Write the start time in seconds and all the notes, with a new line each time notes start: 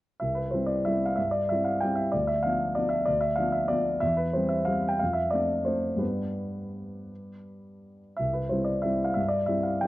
0.19 C2 E5
0.35 B4
0.51 G3 C4 E4 C5
0.66 D5
0.85 G3 C4 E4 E5
1.05 F5
1.16 G2 E5
1.31 D5
1.49 G3 C4 E4 E5
1.64 F5
1.80 G3 C4 E4 G5
1.95 E5
2.12 D2 D5
2.27 E5
2.43 F3 B3 D4 F5
2.75 F3 B3 D4 D5
2.89 E5
3.06 D2 D5
3.21 E5
3.36 F3 B3 D4 F5
3.52 E5
3.68 F3 B3 D4 D5
4.00 E2 E5
4.17 B4
4.33 G3 C4 C5
4.49 E5
4.65 G3 C4 F5
4.88 G5
4.99 F2 F5
5.13 E5
5.30 A3 C4 D4 D5
5.65 A3 C4 D4 C5
5.97 G2 G3 B3 D4 B4
8.16 C2 E5
8.33 B4
8.49 G3 C4 E4 C5
8.64 D5
8.82 G3 C4 E4 E5
9.05 F5
9.14 G2 E5
9.29 D5
9.46 G3 C4 E4 E5
9.63 F5
9.81 G3 G5